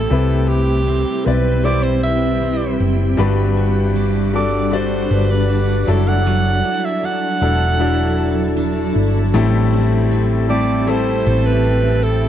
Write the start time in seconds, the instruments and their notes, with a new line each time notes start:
Already playing: steel-string acoustic guitar A2 C4 E4 A4, grand piano G3 C4 E4 A4, alto saxophone A4
0.10 fingered electric bass C2, grand piano C3 G3 C4 E4 B4, ambient pad G3 C4 E4
0.48 steel-string acoustic guitar E4, alto saxophone G4
0.88 steel-string acoustic guitar C4
1.25 fingered electric bass B1, grand piano G3 C4 E4 D5, alto saxophone B4, steel-string acoustic guitar B4
1.64 grand piano G3 C4 E4 C5, steel-string acoustic guitar E4, alto saxophone D5
1.83 alto saxophone C5
2.03 steel-string acoustic guitar B4, alto saxophone E5
2.42 steel-string acoustic guitar C4
2.80 fingered electric bass F#1, steel-string acoustic guitar E4
3.17 fingered electric bass G1, grand piano G2 G3 D4 F#4 B4, steel-string acoustic guitar G3, ambient pad D4 F#4 D5
3.57 steel-string acoustic guitar F#4
3.96 steel-string acoustic guitar D4
4.34 grand piano G3 D4 F#4 A4, alto saxophone D5
4.71 grand piano G3 D4 F#4 D5, steel-string acoustic guitar F#4, alto saxophone C5
5.11 fingered electric bass G1, steel-string acoustic guitar B4
5.31 alto saxophone B4
5.49 steel-string acoustic guitar D4
5.87 fingered electric bass F#1, grand piano F#3 D4 E4 A4, steel-string acoustic guitar F#3, ambient pad F#3 D4 E4 A4, alto saxophone A4
6.08 alto saxophone F#5
6.26 steel-string acoustic guitar F#3
6.65 steel-string acoustic guitar E4
6.85 alto saxophone E5
7.03 steel-string acoustic guitar D4, alto saxophone F#5
7.41 fingered electric bass E1, grand piano F#3 D4 E4 A4, steel-string acoustic guitar A4
7.79 grand piano F#3 D4 E4 A4, steel-string acoustic guitar E4
8.18 steel-string acoustic guitar A4
8.57 steel-string acoustic guitar D4
8.95 fingered electric bass G1, steel-string acoustic guitar E4
9.33 fingered electric bass A1, steel-string acoustic guitar A2, grand piano A2 G3 A3 C4 E4 A4, ambient pad C4 G4 E5 A5
9.72 steel-string acoustic guitar E4
10.11 steel-string acoustic guitar C4
10.48 grand piano G3 A3 C4 E4 G4, steel-string acoustic guitar A4, alto saxophone D5
10.87 grand piano G3 A3 C4 E4 A4, steel-string acoustic guitar E4, alto saxophone C5
11.26 fingered electric bass A1, steel-string acoustic guitar A4
11.46 alto saxophone B4
11.64 steel-string acoustic guitar C4
12.03 steel-string acoustic guitar E4, alto saxophone A4